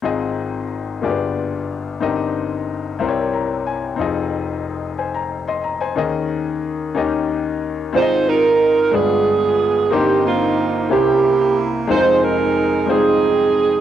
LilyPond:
<<
  \new Staff \with { instrumentName = "Saxophone section" } { \time 6/8 \key aes \major \tempo 4. = 61 << { r2. | r2. | r2. | r2. |
c''8 bes'4 aes'4. | g'8 f'4 g'4 r8 | c''8 bes'4 aes'4. | } \\ { r2. | r2. | r2. | r2. |
<ees' f'>8 <ees' f'>4 <b f'>4. | <bes ees'>8 <bes c'>4 <bes e'>4. | <ees' aes'>8 ees'4 <c' ees'>4. | } >> }
  \new Staff \with { instrumentName = "Grand piano" } { \time 6/8 \key aes \major << { r2. | r2 bes''8 aes''8 | r4. <c'' aes''>16 bes''8 <ees'' c'''>16 bes''16 <c'' aes''>16~ | <c'' aes''>16 r2 r8. |
r2. | r2. | r2. | } \\ { <c' ees' f' aes' ees''>4. <bes b f' g' aes' d''>4. | <c' ees' g' bes' ees''>4. <g c' e' bes' c'' des''>4. | <c' ees' f' aes' ees''>2. | <des' ees' aes' bes' ees''>4. <des' ees' g' bes' ees''>4. |
<c' ees' f' aes' d'' ees''>4 r8 <g aes d' f' b'>4 r8 | <bes c' ees' g' c''>4 r8 <bes des' e' g' c''>4 r8 | <aes c' ees' f' bes' c''>4 r8 <g aes c' ees' f' c''>4 r8 | } >> }
  \new Staff \with { instrumentName = "Grand piano" } { \clef bass \time 6/8 \key aes \major <aes,, aes,>4. <g,, g,>4. | <g,, g,>4. <c, c>4. | <f,, f,>2. | <ees, ees>4. <ees, ees>4. |
<aes,, aes,>4. <g,, g,>4. | <g,, g,>4. <c, c>4. | <f,, f,>2. | }
>>